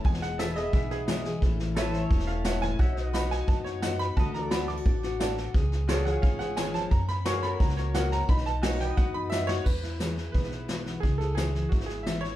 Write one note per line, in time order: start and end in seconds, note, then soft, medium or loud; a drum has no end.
0.04 0.66 E1 medium
0.04 0.35 E2 medium
0.04 0.39 E3 soft
0.04 0.73 G#3 medium
0.04 0.56 B3 soft
0.04 0.38 G#4 medium
0.04 0.22 G#5 medium
0.04 kick loud
0.04 snare soft
0.14 snare soft
0.22 0.39 F#5 loud
0.22 snare soft
0.38 0.70 E3 medium
0.38 0.62 G#4 medium
0.38 1.24 G#4 medium
0.38 0.59 A4 medium
0.38 0.62 B4 medium
0.38 1.42 B4 medium
0.38 0.56 E5 medium
0.38 0.62 E5 medium
0.38 1.42 E5 medium
0.38 snare loud
0.38 hi-hat pedal medium
0.56 0.90 B3 medium
0.56 1.41 G#4 medium
0.56 0.73 D#5 medium
0.56 snare soft
0.73 1.35 B1 medium
0.73 1.04 B2 medium
0.73 1.08 G#3 medium
0.73 0.90 E5 medium
0.73 kick loud
0.73 snare soft
0.91 1.42 B3 medium
0.91 1.01 G#4 medium
0.91 snare soft
1.07 1.39 E3 medium
1.07 1.40 G#3 medium
1.07 1.30 G#4 medium
1.07 1.30 B4 medium
1.07 1.31 E5 medium
1.07 snare loud
1.07 hi-hat pedal medium
1.25 1.40 G#4 medium
1.25 snare soft
1.42 2.03 A1 medium
1.42 1.73 A2 medium
1.42 1.75 E3 medium
1.42 2.10 A3 medium
1.42 1.93 C#4 medium
1.42 1.76 E4 medium
1.42 kick loud
1.42 snare soft
1.59 snare soft
1.75 2.07 E3 medium
1.75 2.80 E4 medium
1.75 1.99 A4 medium
1.75 2.78 A4 medium
1.75 2.03 B4 medium
1.75 1.99 C#5 medium
1.75 2.00 E5 loud
1.75 2.79 E5 medium
1.75 snare loud
1.75 hi-hat pedal medium
1.93 2.26 C#4 medium
1.93 snare soft
2.03 2.79 C#5 medium
2.10 2.72 E1 medium
2.10 2.42 E2 medium
2.10 2.78 A3 medium
2.10 kick loud
2.10 snare soft
2.19 snare soft
2.27 2.77 C#4 medium
2.27 2.44 F5 medium
2.27 snare soft
2.44 2.62 G#2 medium
2.44 2.67 A4 medium
2.44 2.68 C#5 medium
2.44 2.68 E5 medium
2.44 2.62 F#5 medium
2.44 snare loud
2.44 hi-hat pedal medium
2.61 2.78 A2 medium
2.61 2.79 G#5 loud
2.61 snare soft
2.79 3.41 B1 medium
2.79 3.10 B2 medium
2.79 3.30 D#4 medium
2.79 4.15 F#4 medium
2.79 3.06 C#5 medium
2.79 3.02 E5 medium
2.79 3.11 F#5 medium
2.79 kick loud
2.79 snare soft
2.97 snare soft
3.02 4.16 B4 medium
3.02 4.16 D#5 medium
3.13 3.44 D#3 medium
3.13 3.36 F#4 medium
3.13 3.99 F#4 medium
3.13 3.36 B4 medium
3.13 3.37 D#5 medium
3.13 3.30 B5 medium
3.13 snare loud
3.13 hi-hat pedal medium
3.31 3.65 D#4 medium
3.31 3.48 G#5 medium
3.31 snare soft
3.47 3.79 F#2 medium
3.47 4.09 F#2 medium
3.47 3.82 B3 medium
3.47 3.65 A5 medium
3.47 kick loud
3.47 snare soft
3.64 4.15 D#4 medium
3.64 3.81 C#5 medium
3.64 snare soft
3.82 4.13 D#3 medium
3.82 4.15 B3 medium
3.82 4.05 F#4 medium
3.82 4.05 B4 medium
3.82 4.06 D#5 medium
3.82 3.99 F#5 medium
3.82 snare loud
3.82 hi-hat pedal medium
3.99 4.15 F#4 medium
3.99 4.16 B5 loud
3.99 snare soft
4.17 4.78 D2 medium
4.17 4.48 D3 medium
4.17 4.50 A3 medium
4.17 4.85 D4 medium
4.17 5.53 F#4 medium
4.17 4.50 F#4 medium
4.17 4.43 B4 medium
4.17 4.40 D#5 medium
4.17 4.33 A5 loud
4.17 kick loud
4.17 snare soft
4.34 4.51 A#5 medium
4.34 snare soft
4.40 5.54 A4 medium
4.40 5.54 D5 medium
4.51 4.82 A3 medium
4.51 4.74 F#4 medium
4.51 4.67 F#4 medium
4.51 4.74 A4 medium
4.51 4.74 D5 medium
4.51 4.68 B5 medium
4.51 snare loud
4.51 hi-hat pedal medium
4.68 4.77 E4 medium
4.68 5.50 D6 medium
4.68 snare soft
4.77 5.03 F#4 medium
4.86 5.47 A1 medium
4.86 5.17 A2 medium
4.86 5.20 D4 medium
4.86 kick loud
4.86 snare soft
5.03 5.37 F#4 medium
5.03 snare soft
5.20 5.51 A3 medium
5.20 5.53 D4 medium
5.20 5.42 F#4 medium
5.20 5.43 A4 medium
5.20 5.43 D5 medium
5.20 snare loud
5.20 hi-hat pedal medium
5.38 5.53 F#4 medium
5.38 snare soft
5.54 6.15 C#2 medium
5.54 5.85 C#3 medium
5.54 5.88 G#4 medium
5.54 kick loud
5.54 snare soft
5.72 snare soft
5.88 6.19 F3 medium
5.88 6.11 F4 medium
5.88 6.09 F#4 medium
5.88 6.11 G#4 medium
5.88 6.06 G#4 medium
5.88 6.10 A4 medium
5.88 6.12 C#5 loud
5.88 6.11 D5 medium
5.88 snare loud
5.88 hi-hat pedal medium
6.05 6.90 F4 medium
6.05 6.39 G#4 medium
6.05 6.22 F#5 medium
6.05 snare soft
6.10 6.91 G#4 medium
6.10 6.91 C#5 medium
6.22 6.84 G#1 medium
6.22 6.54 G#2 medium
6.22 6.90 C#4 medium
6.22 6.39 F5 medium
6.22 kick loud
6.22 snare soft
6.39 6.90 G#4 medium
6.39 6.56 F#5 medium
6.39 snare soft
6.56 6.74 D#3 medium
6.56 6.79 F4 medium
6.56 6.80 G#4 medium
6.56 6.80 C#5 medium
6.56 6.73 G#5 medium
6.56 snare loud
6.56 hi-hat pedal medium
6.74 6.91 F3 medium
6.74 6.91 A5 loud
6.74 snare soft
6.91 7.22 F#2 medium
6.91 7.53 F#2 medium
6.91 7.42 C#4 medium
6.91 7.08 A#5 medium
6.91 kick loud
6.91 snare soft
7.08 7.25 B5 loud
7.08 snare soft
7.25 7.56 F#3 medium
7.25 7.48 F#4 medium
7.25 8.12 F#4 medium
7.25 8.28 F#4 medium
7.25 7.52 G#4 medium
7.25 7.48 A#4 medium
7.25 7.49 C#5 medium
7.25 8.29 C#5 medium
7.25 7.42 C#6 loud
7.25 snare loud
7.25 hi-hat pedal medium
7.43 7.77 C#4 soft
7.43 7.59 B5 loud
7.43 snare soft
7.52 8.28 A#4 medium
7.60 8.21 C#2 medium
7.60 7.91 C#3 medium
7.60 7.94 A#3 medium
7.60 7.77 A#5 medium
7.60 kick loud
7.60 snare soft
7.69 snare soft
7.77 8.27 C#4 medium
7.77 7.94 C#5 medium
7.77 snare soft
7.94 8.25 F#3 medium
7.94 8.27 A#3 medium
7.94 8.17 F#4 medium
7.94 8.17 A#4 medium
7.94 8.18 C#5 medium
7.94 8.11 F#5 medium
7.94 snare loud
7.94 hi-hat pedal medium
8.12 8.27 F#4 medium
8.12 8.29 A#5 loud
8.12 snare soft
8.28 8.90 B1 loud
8.28 8.59 B2 medium
8.28 8.79 D#4 medium
8.28 8.46 B5 loud
8.28 kick loud
8.28 snare soft
8.37 snare soft
8.46 8.63 A5 loud
8.46 snare soft
8.62 8.94 F#3 medium
8.62 8.73 E4 medium
8.62 8.85 F#4 medium
8.62 9.65 F#4 medium
8.62 8.84 A#4 medium
8.62 8.86 B4 medium
8.62 8.90 C#5 medium
8.62 8.87 D#5 medium
8.62 8.79 G#5 medium
8.62 snare loud
8.62 hi-hat pedal medium
8.73 9.48 F#4 medium
8.80 9.14 D#4 medium
8.80 9.65 B4 medium
8.80 8.97 G5 medium
8.80 snare soft
8.90 9.66 D#5 medium
8.97 9.28 F#2 medium
8.97 9.59 F#2 medium
8.97 9.31 B3 medium
8.97 9.14 F#5 medium
8.97 kick loud
8.97 snare medium
9.14 9.64 D#4 medium
9.14 9.25 B5 loud
9.30 9.62 F#3 medium
9.30 9.64 B3 medium
9.30 9.54 F#4 medium
9.30 9.55 B4 medium
9.30 9.55 D#5 medium
9.30 9.48 E5 loud
9.30 snare medium
9.30 hi-hat pedal medium
9.47 9.64 F#4 medium
9.47 9.64 C#5 loud
9.47 snare medium
9.64 9.96 E2 medium
9.64 10.27 E2 medium
9.64 10.31 B4 medium
9.64 kick loud
9.64 snare soft
9.64 crash medium
9.83 10.17 E4 medium
9.83 snare soft
9.99 10.31 E3 medium
9.99 11.01 G#4 medium
9.99 snare medium
9.99 hi-hat pedal medium
10.17 10.52 E4 soft
10.17 snare soft
10.32 10.96 B1 medium
10.32 10.65 B2 medium
10.32 10.85 B3 medium
10.32 11.04 B4 medium
10.32 kick medium
10.32 snare soft
10.43 snare soft
10.52 11.38 E4 medium
10.52 snare soft
10.68 11.00 E3 medium
10.68 snare medium
10.68 hi-hat pedal medium
10.86 11.01 B3 medium
10.86 snare soft
11.00 11.65 C#2 medium
11.00 11.34 C#3 medium
11.00 11.20 G#4 medium
11.00 kick medium
11.00 snare soft
11.18 12.36 G#4 medium
11.18 11.37 A4 medium
11.18 snare soft
11.35 11.69 E3 medium
11.35 11.55 E4 medium
11.35 11.68 G#4 medium
11.35 snare loud
11.35 hi-hat pedal medium
11.55 11.72 E4 soft
11.55 snare soft
11.69 12.34 G#1 medium
11.69 12.03 G#2 medium
11.69 11.88 E4 medium
11.69 11.88 F#4 medium
11.69 kick loud
11.69 snare soft
11.81 snare soft
11.86 12.23 E4 medium
11.86 12.06 G#4 medium
11.86 snare soft
12.03 12.36 E3 medium
12.03 12.23 E5 medium
12.03 snare loud
12.03 hi-hat pedal medium
12.21 12.36 E4 medium
12.21 12.36 C#5 medium
12.21 snare soft